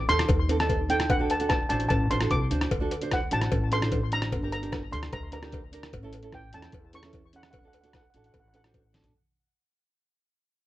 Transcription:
0.08 upright bass D#2, nylon-string guitar C4 D#4 A4, steel pan C6, closed hi-hat
0.19 cross-stick, closed hi-hat
0.29 upright bass D#2, kick, closed hi-hat, cowbell
0.49 nylon-string guitar C4 D#4 A4, closed hi-hat, cowbell
0.59 nylon-string guitar C4 D#4 A4, steel pan A5, cross-stick, closed hi-hat
0.69 kick, closed hi-hat, cowbell
0.89 nylon-string guitar C4 D#4 A4, steel pan G5, closed hi-hat
1.00 cross-stick, closed hi-hat
1.10 upright bass D2, steel pan F#5, kick, closed hi-hat, cowbell
1.19 nylon-string guitar D4 F#4 A4
1.30 steel pan A5, closed hi-hat, cowbell
1.40 nylon-string guitar D4 F#4 A4, closed hi-hat
1.49 steel pan A5, kick, cross-stick, closed hi-hat, cowbell
1.69 upright bass A1, nylon-string guitar D4 F#4 C5, steel pan A5, closed hi-hat
1.80 closed hi-hat
1.89 upright bass A1, steel pan A5, kick, closed hi-hat, cowbell
2.10 upright bass A1, nylon-string guitar D4 F#4 C5, steel pan C6, closed hi-hat, cowbell
2.20 nylon-string guitar D4 F#4 A4, cross-stick, closed hi-hat
2.31 upright bass C2, steel pan D6, kick, closed hi-hat, cowbell
2.50 upright bass D2, nylon-string guitar D4 F#4 C5, closed hi-hat
2.61 cross-stick, closed hi-hat
2.71 upright bass D2, kick, closed hi-hat, cowbell
2.80 nylon-string guitar D4 F#4 A4
2.91 closed hi-hat, cowbell
3.01 nylon-string guitar D4 F#4 C5, closed hi-hat
3.11 steel pan F#5, kick, cross-stick, closed hi-hat, cowbell
3.31 upright bass A1, nylon-string guitar D4 F#4 C5, steel pan A5, closed hi-hat
3.42 cross-stick, closed hi-hat
3.52 upright bass A1, kick, closed hi-hat, cowbell
3.71 nylon-string guitar D4 F#4 A4, steel pan C6, closed hi-hat, cowbell
3.81 nylon-string guitar D4 F#4 C5, cross-stick, closed hi-hat
3.92 kick, closed hi-hat, cowbell
4.12 nylon-string guitar D4 F#4 C5, steel pan A#5, closed hi-hat
4.22 cross-stick, closed hi-hat
4.32 upright bass G1, kick, closed hi-hat, cowbell
4.42 nylon-string guitar D4 G4 A#4
4.52 steel pan A#5, closed hi-hat, cowbell
4.62 nylon-string guitar D4 G4 A#4, closed hi-hat
4.72 kick, cross-stick, closed hi-hat, cowbell
4.91 upright bass D2, nylon-string guitar D4 G4 A4, steel pan C6, closed hi-hat
5.03 cross-stick, closed hi-hat
5.13 upright bass D2, steel pan A#5, kick, closed hi-hat, cowbell
5.32 nylon-string guitar D4 G4 A#4, steel pan A#5, closed hi-hat, cowbell
5.42 nylon-string guitar D4 G4 A#4, cross-stick, closed hi-hat
5.53 kick, closed hi-hat, cowbell
5.72 nylon-string guitar D4 G4 A#4, closed hi-hat
5.83 cross-stick, closed hi-hat
5.93 upright bass A1, kick, closed hi-hat, cowbell
6.03 nylon-string guitar C#4 E4 A4
6.13 closed hi-hat, cowbell
6.23 nylon-string guitar C#4 E4 A4, closed hi-hat
6.33 steel pan G5, kick, cross-stick, closed hi-hat, cowbell
6.53 upright bass E2, nylon-string guitar C#4 E4 A4, steel pan A5, closed hi-hat
6.62 cross-stick, closed hi-hat
6.72 upright bass E2, kick, closed hi-hat, cowbell
6.93 nylon-string guitar C#4 E4 A4, steel pan C#6, closed hi-hat, cowbell
7.03 nylon-string guitar C#4 E4 A4, cross-stick, closed hi-hat
7.13 kick, closed hi-hat, cowbell
7.33 nylon-string guitar C#4 E4 A4, steel pan F#5, closed hi-hat
7.43 cross-stick, closed hi-hat
7.51 upright bass D2, steel pan F#5, kick, closed hi-hat, cowbell
7.59 steel pan F#5
7.63 nylon-string guitar D4 F#4 A4
7.68 steel pan F#5
7.73 steel pan F#5, closed hi-hat, cowbell
7.81 nylon-string guitar D4 F#4 A4, steel pan F#5, closed hi-hat
7.88 steel pan F#5
7.93 steel pan F#5, kick, cross-stick, closed hi-hat, cowbell
8.03 steel pan F#5
8.10 steel pan F#5, closed hi-hat
8.14 upright bass A1, nylon-string guitar D4 F#4 A4, steel pan F#5
8.24 steel pan F#5, closed hi-hat
8.33 upright bass A1, steel pan F#5, kick, closed hi-hat, cowbell
8.40 steel pan F#5
8.48 steel pan F#5
8.53 nylon-string guitar D4 F#4 A4, steel pan F#5, closed hi-hat, cowbell
8.64 nylon-string guitar D4 F#4 C5, cross-stick, closed hi-hat
8.74 kick, closed hi-hat, cowbell
8.93 nylon-string guitar D4 F#4 A4, snare, closed hi-hat
9.04 closed hi-hat, floor tom

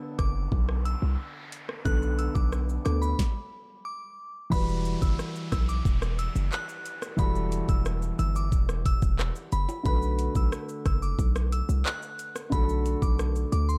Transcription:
Already playing: grand piano D3 B3 A4, noise sweep
0.19 808-style bass F#1, synth bell D6, kick, cross-stick, closed hi-hat
0.52 808-style bass B1, kick
0.69 cross-stick
0.85 synth bell E6, closed hi-hat
1.02 808-style bass C2
1.52 closed hi-hat
1.69 cross-stick
1.85 808-style bass B1, grand piano D3 B3 A4, synth bell F#6, kick, shaker
2.02 shaker
2.19 synth bell E6, closed hi-hat, shaker
2.35 808-style bass B1, synth bell D6, kick, shaker
2.52 cross-stick, shaker
2.69 shaker
2.85 808-style bass D2, grand piano D3 B3 A4, synth bell D6, cross-stick, closed hi-hat, shaker
3.02 synth bell B5, shaker
3.19 kick, snare
3.85 synth bell D6
4.50 808-style bass E1, grand piano E3 G3 F#4, synth bell B5, kick, crash, downlifter, shaker, maracas
4.55 grand piano B4
4.69 maracas, shaker
4.85 closed hi-hat, shaker, maracas
5.02 808-style bass F#1, synth bell E6, kick, shaker, maracas
5.19 cross-stick, maracas, shaker
5.35 maracas, shaker
5.52 808-style bass B1, synth bell E6, kick, cross-stick, closed hi-hat, shaker, maracas
5.69 synth bell D6, maracas, shaker
5.85 808-style bass E1, kick, maracas, shaker
6.02 cross-stick, maracas, shaker
6.19 synth bell E6, closed hi-hat, shaker
6.35 808-style bass F#1, maracas, shaker
6.52 synth bell F#6, clap, maracas, shaker
6.69 maracas, shaker
6.85 closed hi-hat, maracas, shaker
7.02 cross-stick, maracas, shaker
7.17 808-style bass E1, grand piano E3 G3 F#4, synth bell B5, kick, maracas, shaker
7.21 grand piano A4
7.35 maracas, shaker
7.52 closed hi-hat, maracas, shaker
7.68 808-style bass E1, synth bell E6, kick, maracas, shaker
7.85 cross-stick, maracas, shaker
8.02 maracas, shaker
8.19 808-style bass G1, synth bell E6, closed hi-hat, maracas, shaker
8.35 synth bell D6, maracas, shaker
8.52 808-style bass E1, kick, maracas, shaker
8.69 cross-stick, maracas, shaker
8.86 synth bell E6, kick, closed hi-hat, shaker
9.02 808-style bass E1, kick, maracas, shaker
9.19 cross-stick, clap, maracas, shaker
9.35 maracas, shaker
9.52 808-style bass F#1, synth bell B5, closed hi-hat, maracas, shaker
9.69 high timbale, maracas, shaker
9.83 808-style bass B1, grand piano D3 A3 F#4, synth bell B5, kick, maracas, shaker
9.88 grand piano B4
10.02 maracas, shaker
10.19 closed hi-hat, shaker, maracas
10.35 808-style bass B1, synth bell E6, kick, maracas, shaker
10.52 cross-stick, maracas, shaker
10.69 maracas, shaker
10.86 808-style bass F#1, synth bell E6, kick, cross-stick, closed hi-hat, shaker, maracas
11.02 synth bell D6, shaker, maracas
11.19 808-style bass B1, kick, maracas, shaker
11.35 cross-stick, maracas, shaker
11.52 synth bell E6, closed hi-hat, shaker
11.69 808-style bass C2, maracas, shaker
11.85 synth bell F#6, clap, maracas, shaker
12.02 maracas, shaker
12.19 closed hi-hat, maracas, shaker
12.36 cross-stick, maracas, shaker
12.50 808-style bass B1, grand piano D3 A3 F#4, synth bell B5, kick, shaker, maracas
12.54 grand piano A4
12.69 maracas, shaker
12.86 closed hi-hat, maracas, shaker
13.02 808-style bass B1, synth bell D6, kick, shaker, maracas
13.19 cross-stick, maracas, shaker
13.35 maracas, shaker
13.52 808-style bass D2, synth bell D6, closed hi-hat, shaker, maracas
13.69 synth bell C6, maracas, shaker

